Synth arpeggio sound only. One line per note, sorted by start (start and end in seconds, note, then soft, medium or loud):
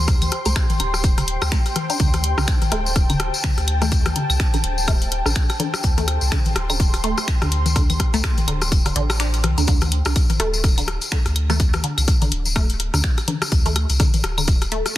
0.08 0.12 D3 medium
0.46 0.49 A3 loud
0.80 0.84 D3 medium
1.18 1.21 D3 medium
1.42 1.44 E3 medium
1.52 1.54 A3 medium
1.90 1.93 D4 loud
2.00 2.04 D3 medium
2.38 2.41 D3 medium
2.72 2.76 A3 loud
3.10 3.13 D3 medium
3.44 3.48 D3 medium
3.82 3.85 A3 loud
4.16 4.20 D3 medium
4.54 4.57 D3 medium
4.88 4.92 A3 loud
5.26 5.29 D3 medium
5.60 5.64 D3 medium
5.98 6.01 A3 loud
6.32 6.36 D3 medium
6.70 6.73 D3 medium
7.04 7.08 A3 loud
7.42 7.45 D3 medium
7.76 7.80 D3 medium
8.14 8.17 A3 loud
8.48 8.52 D3 medium
8.86 8.89 D3 medium
8.96 9.00 D3 loud
9.20 9.26 D4 medium
9.58 9.61 D3 medium
9.68 9.72 D3 medium
10.06 10.09 D3 medium
10.40 10.44 A3 loud
10.78 10.81 D3 medium
11.12 11.16 D3 medium
11.50 11.53 A3 loud
11.84 11.88 D3 medium
12.22 12.25 D3 medium
12.56 12.60 A3 loud
12.94 12.97 D3 medium
13.28 13.32 D3 medium
13.66 13.69 A3 loud
14.00 14.04 D3 medium
14.38 14.41 D3 medium
14.72 14.76 A3 loud